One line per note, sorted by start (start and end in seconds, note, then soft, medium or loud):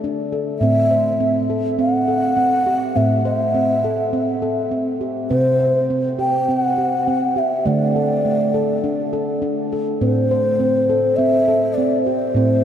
0.00 0.58 D3 medium
0.00 0.33 D4 medium
0.33 0.62 A4 medium
0.59 2.92 A2 medium
0.59 0.91 C4 medium
0.59 1.44 E5 loud
0.91 1.20 C5 medium
1.20 1.50 C4 medium
1.50 1.79 A4 medium
1.79 2.08 C4 medium
1.79 2.98 F#5 medium
2.08 2.37 A4 medium
2.37 2.66 C4 medium
2.66 2.96 G4 medium
2.96 5.27 A2 medium
2.96 3.25 C4 medium
2.96 3.25 E5 medium
3.25 3.55 C5 medium
3.25 4.39 E5 medium
3.54 3.84 C4 medium
3.84 4.14 A4 medium
4.13 4.43 C4 medium
4.42 4.72 A4 medium
4.71 5.01 C4 medium
5.01 5.30 G4 medium
5.30 7.61 C3 medium
5.30 5.60 C4 medium
5.30 5.85 C5 medium
5.60 5.89 C5 medium
5.90 6.19 C4 medium
6.19 6.48 G4 medium
6.19 6.53 G5 medium
6.48 6.78 C4 medium
6.48 7.40 F#5 medium
6.78 7.07 G4 medium
7.08 7.36 C4 medium
7.36 7.65 G4 medium
7.36 7.68 E5 medium
7.66 9.97 D3 medium
7.66 7.95 A3 medium
7.66 9.42 D5 medium
7.96 8.24 A4 medium
8.25 8.54 A3 medium
8.54 8.83 A4 medium
8.84 9.13 D4 medium
9.13 9.42 A4 medium
9.42 9.71 D4 medium
9.72 10.01 A4 medium
10.01 12.32 A2 medium
10.01 10.30 C4 medium
10.01 11.18 C5 medium
10.31 10.60 C5 medium
10.60 10.89 C4 medium
10.90 11.18 A4 medium
11.16 11.47 C4 medium
11.16 11.75 E5 medium
11.48 11.77 A4 medium
11.74 12.06 C4 medium
11.74 12.02 D5 medium
12.03 12.35 G4 medium
12.03 12.64 C5 medium
12.35 12.64 A2 medium
12.35 12.64 C4 medium